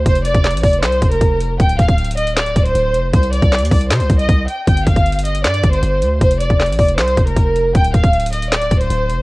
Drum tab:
HH |x--x--x--x--x-x-x-o--x--x--x--x--x--x-----x-----|x--x--x--x--x-x-x-x--x--x--x--x--x--x-----x-----|x--x--x--x--x-x-x-o--x--x--x--x--x--x-----x-----|x--x--x--x--x-x-x-x--x--x--x--x--x--x-----x-----|
CP |------------x-----------x-----------------------|------------------------x-----------------------|------------x-----------x-----------------------|------------------------x-----------------------|
SD |------------o-----------o-----------------------|------------------------o-----------------------|------------o-----------o-----------------------|------------------------o-----------------------|
BD |o--------o--------o-----------o-----o-----------|o-----o--o--------------------o-----------------|o--------o--------o-----------o-----o-----------|o-----o--o--------------------o-----------------|

HH |x--x--x--x--x-x-x-o--x--x--x--x--x--x-----x-----|x--x--x--x--x-x-x-x--x--x--x--x--x--x-----x-----|
CP |------------x-----------x-----------------------|------------------------x-----------------------|
SD |------------o-----------o-----------------------|------------------------o-----------------------|
BD |o--------o--------o-----------o-----o-----------|o-----o--o--------------------o-----------------|